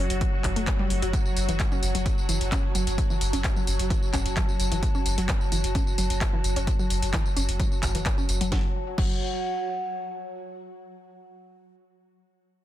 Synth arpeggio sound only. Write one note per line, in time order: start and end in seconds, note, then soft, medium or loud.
0.21 0.32 F#3 medium
0.56 0.60 A3 medium
0.79 0.86 G3 loud
1.02 1.09 F#3 medium
1.13 1.24 F#3 medium
1.49 1.58 E3 medium
1.72 1.76 C#4 medium
1.95 2.05 F#3 medium
2.29 2.40 E3 medium
2.52 2.56 C#4 medium
2.75 2.86 F#3 medium
3.10 3.20 E3 medium
3.33 3.37 C#4 medium
3.56 3.66 F#3 medium
3.90 4.01 E3 medium
4.13 4.18 C#4 medium
4.37 4.47 F#3 medium
4.72 4.82 E3 medium
4.95 4.99 C#4 medium
5.18 5.28 F#3 medium
5.52 5.63 E3 medium
5.75 5.79 C#4 medium
5.98 6.09 F#3 medium
6.33 6.43 E3 medium
6.56 6.60 C#4 medium
6.79 6.89 F#3 medium
7.13 7.24 E3 medium
7.36 7.41 C#4 medium
7.60 7.70 F#3 medium
7.95 8.05 E3 medium
8.18 8.22 C#4 medium
8.41 8.51 F#3 medium
8.52 8.65 F#3 medium
8.98 9.19 F#3 loud